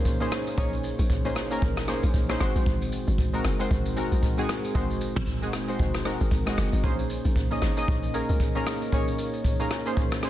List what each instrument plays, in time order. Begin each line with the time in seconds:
Already playing: synth keys A#3 C#4 D#4 G#4 A#4 C5 C#5
0.05 kick, shaker
0.20 synth keys A#3 C#4 D#4 G#4 C5, shaker
0.32 cross-stick, shaker
0.47 shaker
0.57 log drum bass A#1, synth keys A#3 C#4 D#4 G#4 C#5, kick, shaker
0.73 shaker
0.84 shaker
0.99 log drum bass A#1, shaker
1.10 kick, shaker
1.25 synth keys A#3 C#4 D#4 G#4 C5, shaker
1.36 log drum bass G#1, cross-stick, shaker
1.51 synth keys A#3 C#4 D#4 G#4 A#4, shaker
1.62 log drum bass G#1, kick, shaker
1.77 cross-stick, shaker
1.88 synth keys A#3 C#4 D#4 G#4 C5, cross-stick, shaker
2.03 log drum bass A#1, shaker
2.14 log drum bass A#1, kick, shaker
2.29 synth keys A#3 C#4 D#4 G#4 C5, cross-stick, shaker
2.40 log drum bass G#1, synth keys G#3 C4 D#4 F#4 C5, cross-stick, shaker
2.55 log drum bass A#1, shaker
2.66 log drum bass G#1, kick, shaker
2.82 shaker
2.92 shaker
3.07 log drum bass G#1, shaker
3.18 kick, shaker
3.33 synth keys G#3 C4 D#4 F#4 A#4, shaker
3.44 log drum bass F#1, cross-stick, shaker
3.59 synth keys G#3 C4 D#4 F#4 C5, shaker
3.71 log drum bass G#1, kick, shaker
3.86 shaker
3.96 synth keys G#3 C4 D#4 F#4 A#4, shaker
4.12 log drum bass A#1, shaker
4.23 kick, shaker
4.38 synth keys G#3 C4 D#4 F#4 G#4, shaker
4.49 cross-stick, shaker
4.64 shaker
4.75 log drum bass G#1, synth keys G#3 C4 D#4 F#4 C5, kick, shaker
4.90 shaker
5.01 shaker
5.16 log drum bass G#1, mid tom, shaker
5.27 kick, shaker
5.42 synth keys G#3 C4 D#4 F#4 G#4, shaker
5.53 log drum bass F#1, cross-stick, shaker
5.68 synth keys G#3 C4 D#4 F#4 C5, shaker
5.79 log drum bass F#1, kick, shaker
5.94 cross-stick, shaker
6.05 synth keys G#3 C4 D#4 F#4 A#4, cross-stick, shaker
6.20 log drum bass G#1, shaker
6.31 log drum bass G#1, kick, shaker
6.46 synth keys G#3 C4 D#4 F#4 D#5, cross-stick, shaker
6.58 log drum bass F#1, cross-stick, shaker
6.73 log drum bass G#1, shaker
6.83 log drum bass A#1, synth keys A#3 C#4 D#4 G#4 C5, kick, shaker
6.99 shaker
7.10 shaker
7.25 log drum bass A#1, shaker
7.36 kick, shaker
7.51 synth keys A#3 C#4 D#4 G#4 D#5, shaker
7.62 log drum bass G#1, cross-stick, shaker
7.77 synth keys A#3 C#4 D#4 G#4 D#5, shaker
7.88 log drum bass A#1, kick, shaker
8.03 shaker
8.14 synth keys A#3 C#4 D#4 G#4 A#4, shaker
8.29 log drum bass C#2, shaker
8.40 kick, shaker
8.55 synth keys A#3 C#4 D#4 G#4 A#4, shaker
8.66 cross-stick, shaker
8.82 shaker
8.92 synth keys A#3 C#4 D#4 G#4 C#5, kick, shaker
9.08 shaker
9.19 shaker
9.34 shaker
9.44 kick, shaker
9.60 synth keys A#3 C#4 D#4 G#4 A#4, shaker
9.71 cross-stick, shaker
9.86 synth keys A#3 C#4 D#4 G#4 C5, shaker
9.97 kick, shaker
10.12 cross-stick, shaker
10.23 synth keys A#3 C#4 D#4 G#4 C5, cross-stick, shaker